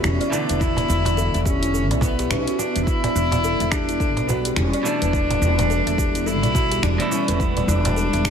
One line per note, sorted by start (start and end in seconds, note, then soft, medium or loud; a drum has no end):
0.00 0.28 B2 medium
0.00 0.29 E3 medium
0.00 0.30 A3 medium
0.00 8.30 B3 medium
0.00 0.31 E4 loud
0.00 2.83 E4 medium
0.00 0.20 E4 medium
0.00 2.83 E5 medium
0.04 0.17 E1 medium
0.04 0.35 C#4 loud
0.04 finger snap medium
0.04 cabasa soft
0.21 0.32 D5 loud
0.21 closed hi-hat soft
0.21 cabasa soft
0.30 2.14 B2 medium
0.30 2.16 D3 medium
0.30 2.15 E3 medium
0.30 2.15 A3 medium
0.30 0.63 D4 loud
0.30 0.47 E4 medium
0.30 cajon slap medium
0.30 cabasa medium
0.49 0.85 E1 medium
0.49 0.56 B4 medium
0.49 closed hi-hat medium
0.49 cabasa soft
0.60 0.76 E4 medium
0.60 1.45 E4 loud
0.60 kick loud
0.60 cabasa soft
0.77 0.88 D5 medium
0.77 cajon bass medium
0.77 closed hi-hat soft
0.77 cabasa soft
0.89 1.28 E1 loud
0.89 1.05 E4 medium
0.89 cabasa medium
1.05 1.17 D5 medium
1.05 cajon bass medium
1.05 cajon slap medium
1.05 closed hi-hat medium
1.05 cabasa soft
1.17 1.33 A4 medium
1.17 cabasa soft
1.34 1.91 E1 medium
1.34 1.44 E5 loud
1.34 closed hi-hat soft
1.34 cabasa soft
1.45 1.98 C#4 loud
1.45 1.55 G4 medium
1.45 kick loud
1.45 cabasa medium
1.62 1.73 E4 medium
1.62 closed hi-hat medium
1.62 cabasa soft
1.74 1.90 A4 medium
1.74 cabasa soft
1.91 2.27 B1 medium
1.91 2.02 D5 medium
1.91 cajon slap medium
1.91 closed hi-hat soft
1.91 cabasa soft
2.01 2.31 B3 medium
2.01 2.18 E4 medium
2.01 cajon bass medium
2.01 kick loud
2.01 cabasa medium
2.19 2.29 G4 medium
2.19 cajon slap medium
2.19 closed hi-hat medium
2.19 cabasa soft
2.30 2.44 B1 medium
2.30 2.60 C#4 loud
2.30 2.47 B4 medium
2.30 finger snap medium
2.30 cabasa soft
2.48 2.58 F#4 medium
2.48 closed hi-hat soft
2.48 cabasa soft
2.59 2.86 D4 loud
2.59 2.74 D4 medium
2.59 cajon slap medium
2.59 cabasa medium
2.76 2.85 E1 medium
2.76 2.87 D4 medium
2.76 closed hi-hat medium
2.76 cabasa soft
2.86 8.30 G3 medium
2.86 3.72 E4 loud
2.86 3.03 E4 medium
2.86 8.30 D5 medium
2.86 kick loud
2.86 cabasa soft
3.04 3.15 D5 medium
3.04 cajon bass loud
3.04 closed hi-hat soft
3.04 cabasa soft
3.15 3.54 E1 loud
3.15 3.32 E4 medium
3.15 cabasa medium
3.32 3.43 D5 medium
3.32 cajon bass medium
3.32 cajon slap medium
3.32 closed hi-hat medium
3.32 cabasa soft
3.44 3.59 A4 loud
3.44 cabasa soft
3.60 4.17 E1 medium
3.60 3.71 E5 loud
3.60 closed hi-hat soft
3.60 cabasa soft
3.71 4.29 D4 loud
3.71 3.82 G4 medium
3.71 finger snap medium
3.71 kick loud
3.71 cabasa medium
3.89 3.99 E4 medium
3.89 closed hi-hat medium
3.89 cabasa soft
4.00 4.16 A4 medium
4.00 kick medium
4.00 cabasa soft
4.17 4.53 B1 medium
4.17 4.28 D5 medium
4.17 cajon slap medium
4.17 closed hi-hat soft
4.17 cabasa soft
4.28 4.55 B3 medium
4.28 4.45 F#4 medium
4.28 cajon bass medium
4.28 cabasa medium
4.45 4.56 G4 medium
4.45 closed hi-hat medium
4.45 cabasa soft
4.56 4.70 E1 medium
4.56 4.86 C#4 loud
4.56 4.73 E4 medium
4.56 finger snap medium
4.56 cabasa soft
4.73 4.85 D5 loud
4.73 closed hi-hat soft
4.73 cabasa soft
4.83 6.67 B2 medium
4.83 6.67 E3 medium
4.83 6.68 A3 medium
4.83 6.28 D4 loud
4.83 6.69 D4 medium
4.83 5.00 E4 medium
4.83 cajon slap medium
4.83 cabasa medium
5.02 5.37 E1 medium
5.02 5.08 B4 medium
5.02 closed hi-hat medium
5.02 cabasa soft
5.13 5.30 E4 medium
5.13 kick loud
5.13 cabasa soft
5.31 5.41 D5 medium
5.31 cajon bass medium
5.31 closed hi-hat soft
5.31 cabasa soft
5.42 5.81 E1 loud
5.42 5.58 E4 medium
5.42 cabasa medium
5.58 5.69 D5 medium
5.58 cajon bass medium
5.58 cajon slap medium
5.58 closed hi-hat medium
5.58 cabasa soft
5.70 5.85 A4 loud
5.70 cabasa soft
5.87 6.43 E1 medium
5.87 5.97 E5 loud
5.87 closed hi-hat soft
5.87 cabasa soft
5.98 6.08 G4 medium
5.98 kick loud
5.98 cabasa medium
6.15 6.25 E4 medium
6.15 closed hi-hat medium
6.15 cabasa soft
6.26 6.84 E4 loud
6.26 6.43 A4 medium
6.26 cabasa soft
6.43 6.79 B1 medium
6.43 6.54 D5 medium
6.43 cajon slap medium
6.43 closed hi-hat soft
6.43 cabasa soft
6.55 6.71 F#4 medium
6.55 kick loud
6.55 cajon bass medium
6.55 cabasa medium
6.71 6.82 G4 medium
6.71 cajon slap medium
6.71 closed hi-hat medium
6.71 cabasa soft
6.83 6.96 E1 loud
6.83 7.11 D4 loud
6.83 6.99 E4 medium
6.83 finger snap medium
6.83 cabasa soft
6.98 8.30 B2 medium
6.98 8.30 E3 medium
6.98 8.30 A3 medium
6.98 8.30 E4 medium
6.98 7.11 D5 loud
6.98 closed hi-hat soft
6.98 cabasa soft
7.11 7.33 C#4 loud
7.11 7.27 E4 medium
7.11 cajon slap medium
7.11 cabasa medium
7.28 7.64 E1 medium
7.28 7.35 B4 medium
7.28 closed hi-hat medium
7.28 cabasa soft
7.34 7.41 C#4 medium
7.40 7.69 B3 loud
7.40 7.56 E4 medium
7.40 kick loud
7.40 cabasa soft
7.57 7.68 D5 medium
7.57 cajon bass medium
7.57 closed hi-hat soft
7.57 cabasa soft
7.68 8.07 E1 loud
7.68 8.30 D4 loud
7.68 7.84 E4 medium
7.68 cabasa medium
7.85 7.96 D5 medium
7.85 cajon bass medium
7.85 cajon slap medium
7.85 closed hi-hat medium
7.85 cabasa soft
7.97 8.12 A4 loud
7.97 cabasa soft
8.13 8.30 E1 medium
8.13 8.24 E5 loud
8.13 closed hi-hat soft
8.13 cabasa soft
8.25 8.30 G4 medium
8.25 finger snap medium
8.25 kick loud
8.25 cabasa medium